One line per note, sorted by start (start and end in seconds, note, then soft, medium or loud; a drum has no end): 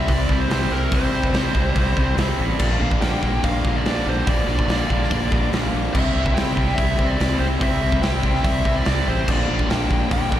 0.00 0.11 E5 loud
0.07 0.25 C2 medium
0.07 0.48 C3 medium
0.07 0.31 G3 medium
0.07 0.29 C4 medium
0.07 0.27 E4 medium
0.07 0.40 D5 loud
0.07 kick loud
0.07 open hi-hat medium
0.29 0.46 C2 medium
0.29 0.50 G3 medium
0.29 0.51 C4 medium
0.29 0.52 E4 medium
0.29 kick medium
0.41 0.73 C5 medium
0.50 0.66 C2 loud
0.50 0.91 C3 medium
0.50 0.74 G3 medium
0.50 0.71 C4 medium
0.50 0.70 E4 medium
0.50 snare loud
0.50 open hi-hat medium
0.71 0.87 C2 medium
0.71 0.92 G3 medium
0.71 0.93 C4 medium
0.71 0.94 E4 medium
0.71 0.93 A#4 medium
0.71 snare soft
0.92 1.09 C2 medium
0.92 1.32 C3 loud
0.92 1.16 G3 loud
0.92 1.13 C4 loud
0.92 1.11 E4 loud
0.92 2.15 C5 medium
0.92 kick loud
0.92 open hi-hat medium
1.12 1.29 C2 medium
1.12 1.34 G3 medium
1.12 1.35 C4 medium
1.12 1.36 E4 medium
1.23 kick medium
1.33 1.50 C2 medium
1.33 1.56 C3 medium
1.33 1.56 G3 medium
1.33 1.54 C4 medium
1.33 snare loud
1.33 open hi-hat medium
1.37 1.53 E4 medium
1.54 1.71 C2 medium
1.54 1.74 C3 medium
1.54 1.77 G3 medium
1.54 1.77 C4 medium
1.54 1.78 E4 loud
1.54 kick medium
1.76 1.92 C2 medium
1.76 2.16 C3 medium
1.76 2.00 G3 medium
1.76 1.98 C4 medium
1.76 1.96 E4 medium
1.76 kick loud
1.76 open hi-hat medium
1.97 2.13 C2 loud
1.97 2.18 G3 medium
1.97 2.18 C4 medium
1.97 2.19 E4 medium
1.97 kick medium
2.17 2.34 C2 loud
2.17 2.58 C3 medium
2.17 2.42 G3 medium
2.17 2.40 C4 loud
2.17 2.37 E4 loud
2.17 snare loud
2.17 open hi-hat medium
2.38 2.55 A1 medium
2.38 2.61 G3 medium
2.38 2.59 C4 medium
2.38 2.58 E4 medium
2.59 2.76 A#1 loud
2.59 3.24 A#2 medium
2.59 3.00 D3 loud
2.59 2.82 G3 loud
2.59 2.81 A#3 loud
2.59 2.79 D4 loud
2.59 2.81 D5 medium
2.59 kick loud
2.59 crash medium
2.79 2.97 A#1 medium
2.79 3.02 G3 medium
2.79 3.03 A#3 medium
2.79 3.04 D4 medium
2.79 3.02 F5 loud
2.91 kick medium
3.01 3.18 A#1 loud
3.01 3.23 D3 medium
3.01 3.23 G3 medium
3.01 3.22 A#3 medium
3.01 3.21 D4 medium
3.01 3.44 G5 loud
3.01 snare loud
3.01 open hi-hat medium
3.21 3.39 A#1 medium
3.21 3.65 A#2 medium
3.21 3.41 D3 medium
3.21 3.44 G3 loud
3.21 3.44 A#3 loud
3.21 3.45 D4 loud
3.21 kick medium
3.43 3.60 A#1 medium
3.43 3.85 D3 medium
3.43 3.67 G3 medium
3.43 3.64 A#3 medium
3.43 3.63 D4 medium
3.43 3.76 F5 loud
3.43 kick loud
3.43 open hi-hat medium
3.64 3.81 A#1 loud
3.64 3.86 G3 medium
3.64 3.86 A#3 medium
3.64 3.87 D4 medium
3.64 kick medium
3.76 4.05 D5 medium
3.85 4.01 A#1 loud
3.85 4.25 A#2 medium
3.85 4.26 D3 medium
3.85 4.09 G3 loud
3.85 4.06 A#3 loud
3.85 4.04 D4 medium
3.85 snare loud
3.85 open hi-hat medium
4.06 4.22 A#1 medium
4.06 4.28 G3 medium
4.06 4.28 A#3 medium
4.06 4.29 D4 medium
4.06 4.29 C5 medium
4.26 4.43 A#1 loud
4.26 4.68 A#2 medium
4.26 4.68 D3 loud
4.26 4.51 G3 loud
4.26 4.48 A#3 loud
4.26 4.47 D4 loud
4.26 5.49 D5 medium
4.26 kick loud
4.26 open hi-hat medium
4.47 4.63 A#1 medium
4.47 4.70 A#3 medium
4.47 4.71 D4 medium
4.51 4.70 G3 medium
4.59 kick medium
4.68 4.84 A#1 loud
4.68 4.91 D3 medium
4.68 4.91 G3 medium
4.68 4.89 A#3 medium
4.68 snare loud
4.68 open hi-hat medium
4.72 4.88 D4 medium
4.90 5.06 A#1 medium
4.90 5.33 A#2 medium
4.90 5.09 D3 medium
4.90 5.11 G3 medium
4.90 5.11 A#3 medium
4.90 5.12 D4 loud
4.90 kick medium
5.03 snare soft
5.10 5.27 A#1 medium
5.10 5.52 D3 medium
5.10 5.34 G3 medium
5.10 5.31 A#3 medium
5.10 5.30 D4 medium
5.10 kick loud
5.10 open hi-hat medium
5.31 5.48 A#1 medium
5.31 5.54 G3 medium
5.31 5.53 A#3 medium
5.31 5.54 D4 medium
5.31 kick medium
5.52 5.68 A#1 medium
5.52 5.92 A#2 loud
5.52 5.93 D3 medium
5.52 5.76 G3 medium
5.52 5.74 A#3 loud
5.52 5.71 D4 loud
5.52 snare loud
5.52 open hi-hat medium
5.73 5.89 A#1 medium
5.73 5.94 G3 medium
5.73 5.93 A#3 medium
5.73 5.92 D4 medium
5.93 6.11 C2 loud
5.93 6.34 C3 medium
5.93 6.17 G3 loud
5.93 6.16 C4 loud
5.93 6.14 E4 loud
5.93 6.34 E5 loud
5.93 kick loud
5.93 crash loud
6.14 6.31 C2 medium
6.14 6.35 G3 medium
6.14 6.37 C4 medium
6.14 6.37 E4 medium
6.26 kick medium
6.35 6.52 C2 loud
6.35 6.58 C3 medium
6.35 6.57 G3 medium
6.35 6.56 C4 medium
6.35 6.55 E4 medium
6.35 6.75 G5 loud
6.35 snare loud
6.35 open hi-hat medium
6.56 6.73 C2 medium
6.56 6.75 C3 medium
6.56 6.77 G3 medium
6.56 6.77 C4 medium
6.56 6.79 E4 medium
6.56 kick medium
6.69 snare soft
6.75 6.94 C2 medium
6.75 7.16 C3 medium
6.75 6.99 G3 medium
6.75 6.97 C4 medium
6.75 7.08 E5 loud
6.75 kick loud
6.75 open hi-hat medium
6.80 6.95 E4 medium
6.96 7.15 C2 medium
6.96 7.18 G3 medium
6.96 7.18 C4 medium
6.96 7.19 E4 medium
6.96 kick medium
7.08 7.38 D5 medium
7.17 7.36 C2 loud
7.17 7.58 C3 loud
7.17 7.42 G3 medium
7.17 7.39 C4 loud
7.17 7.37 E4 loud
7.17 snare loud
7.17 open hi-hat medium
7.39 7.56 C2 medium
7.39 7.60 G3 medium
7.39 7.60 C4 medium
7.39 7.61 E4 medium
7.39 7.45 C5 medium
7.59 7.78 C2 loud
7.59 8.01 C3 loud
7.59 7.84 G3 loud
7.59 7.82 C4 loud
7.59 7.80 E4 loud
7.59 8.02 E5 loud
7.59 kick loud
7.59 open hi-hat medium
7.81 7.99 C2 medium
7.81 8.03 G3 medium
7.81 8.03 C4 medium
7.81 8.04 E4 medium
7.92 kick medium
8.02 8.19 C2 loud
8.02 8.26 C3 medium
8.02 8.25 G3 medium
8.02 8.23 C4 medium
8.02 8.22 E4 medium
8.02 8.45 G5 loud
8.02 snare loud
8.02 open hi-hat medium
8.23 8.40 C2 medium
8.23 8.42 C3 medium
8.23 8.44 G3 medium
8.23 8.45 C4 medium
8.23 8.45 E4 loud
8.23 kick medium
8.35 snare soft
8.43 8.61 C2 loud
8.43 8.84 C3 medium
8.43 8.67 G3 medium
8.43 8.65 C4 medium
8.43 8.63 E4 medium
8.43 8.77 E5 loud
8.43 kick loud
8.43 open hi-hat medium
8.64 8.82 C2 medium
8.64 8.86 G3 medium
8.64 8.86 C4 medium
8.64 8.87 E4 medium
8.64 kick medium
8.76 9.08 D5 medium
8.85 9.03 C2 loud
8.85 9.26 C3 medium
8.85 9.09 G3 loud
8.85 9.06 C4 loud
8.85 9.05 E4 loud
8.85 snare loud
8.85 open hi-hat medium
9.06 9.24 A1 medium
9.06 9.28 G3 medium
9.06 9.27 C4 medium
9.06 9.26 E4 medium
9.06 9.29 C5 medium
9.26 9.44 A#1 loud
9.26 9.92 A#2 medium
9.26 9.67 D3 loud
9.26 9.50 G3 loud
9.26 9.49 A#3 loud
9.26 9.46 D4 loud
9.26 kick loud
9.26 crash loud
9.31 9.68 D5 medium
9.47 9.66 A#1 medium
9.47 9.69 G3 medium
9.47 9.70 A#3 medium
9.47 9.71 D4 medium
9.59 kick medium
9.68 9.86 A#1 medium
9.68 9.90 D3 medium
9.68 9.90 G3 medium
9.68 9.90 A#3 medium
9.68 9.88 D4 medium
9.68 10.08 G5 medium
9.68 snare loud
9.68 open hi-hat medium
9.89 10.07 A#1 loud
9.89 10.33 A#2 medium
9.89 10.09 D3 medium
9.89 10.11 G3 medium
9.89 10.12 A#3 loud
9.89 10.13 D4 loud
9.89 kick medium
10.10 10.28 A#1 medium
10.10 10.40 D3 medium
10.10 10.34 G3 medium
10.10 10.33 A#3 medium
10.10 10.30 D4 medium
10.10 10.40 G5 medium
10.10 kick loud
10.10 open hi-hat medium
10.31 10.40 A#1 medium
10.31 10.40 G3 medium
10.31 10.40 A#3 medium
10.31 10.40 D4 medium
10.31 kick loud